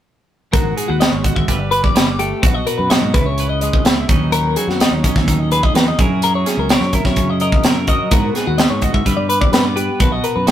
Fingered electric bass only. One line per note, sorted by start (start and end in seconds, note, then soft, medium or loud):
0.53 0.72 G#1 medium
0.89 1.07 D#2 medium
1.12 1.31 G#1 medium
1.36 1.46 G#1 medium
1.48 1.85 G1 medium
1.96 2.32 G1 medium
2.43 2.61 B1 medium
2.79 2.97 F#2 medium
3.02 3.11 G#2 medium
3.14 3.69 C#2 medium
3.85 4.03 C#2 medium
4.09 4.54 D#2 medium
4.67 4.86 F#2 medium
4.91 5.09 D#2 medium
5.16 5.61 D#2 medium
5.75 5.93 E2 medium
5.99 6.44 F#2 medium
6.57 6.76 C#2 medium
6.81 6.99 F#2 medium
7.05 7.50 F#2 medium
7.64 8.00 F#2 medium
8.12 8.30 G#2 medium
8.47 8.65 D#2 medium
8.71 8.89 G#2 medium
8.94 9.03 G#2 medium
9.06 9.42 G2 medium
9.52 9.89 G2 medium
10.00 10.18 B1 loud
10.36 10.51 F#2 medium